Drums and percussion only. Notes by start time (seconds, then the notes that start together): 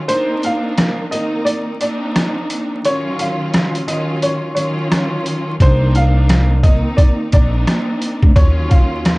0.09 closed hi-hat
0.43 closed hi-hat
0.78 cross-stick, snare, closed hi-hat
1.12 closed hi-hat
1.47 closed hi-hat
1.81 closed hi-hat
2.16 cross-stick, snare, closed hi-hat
2.50 closed hi-hat
2.85 closed hi-hat
3.19 closed hi-hat
3.54 cross-stick, snare, closed hi-hat
3.75 closed hi-hat
3.88 closed hi-hat
4.22 closed hi-hat
4.57 closed hi-hat
4.92 cross-stick, snare, closed hi-hat
5.26 closed hi-hat
5.60 kick, closed hi-hat
5.95 closed hi-hat
6.29 cross-stick, snare, closed hi-hat
6.64 kick, closed hi-hat
6.98 kick, closed hi-hat
7.32 kick, closed hi-hat
7.67 cross-stick, snare, closed hi-hat
8.02 closed hi-hat
8.23 kick
8.36 kick, closed hi-hat
8.71 kick, closed hi-hat
9.05 cross-stick, snare, closed hi-hat